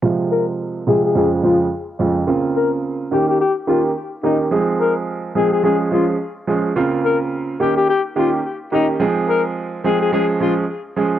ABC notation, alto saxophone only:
X:1
M:4/4
L:1/16
Q:"Swing 16ths" 1/4=107
K:Fm
V:1 name="Alto saxophone"
z2 B z3 A A A z F z4 z | z2 B z3 G G G z F z3 E z | z2 B z3 A A A z F z4 z | z2 B z3 G G G z F z3 E z |
z2 B z3 A A A z F z4 z |]